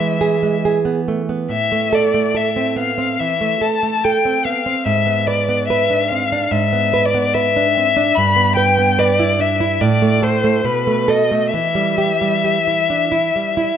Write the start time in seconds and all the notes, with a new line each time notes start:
Already playing: E3 E5
0.00 G#3
0.21 G#4
0.43 G#3
0.65 G#4
0.85 B3
1.08 A3
1.29 B3
1.49 A2 E5
1.72 A3
1.93 A4 D5
2.14 A3
2.35 A4 E5
2.56 C4
2.76 B3 F5
2.98 C4
3.20 E3 E5
3.41 A3
3.61 A4 A5
3.83 A3
4.04 A4 G5
4.25 C4
4.45 B3 F5
4.66 C4
4.86 G#2 E5
5.06 B3
5.27 B4 D5
5.49 B3
5.68 B4 E5
5.91 D4
6.09 C4 F5
6.32 D4
6.51 G#2 E5
6.73 B3
6.94 B4
7.06 D5
7.14 B3
7.34 B4 E5
7.56 D4
7.77 C4
7.97 D4
8.15 G2 B5
8.36 B3
8.56 B4 G5
8.79 B3
8.98 B4 D5
9.20 E4
9.39 D4 E5
9.60 E4
9.81 A2 D5
10.02 A3
10.23 A4 C5
10.44 A3
10.64 B2 B4
10.87 A3
11.08 A4 D#5
11.31 A3
11.54 E3 E5
11.75 G3
11.98 G4
12.21 G3
12.44 G4
12.67 E4
12.90 D4
13.12 E4
13.36 G3
13.57 E4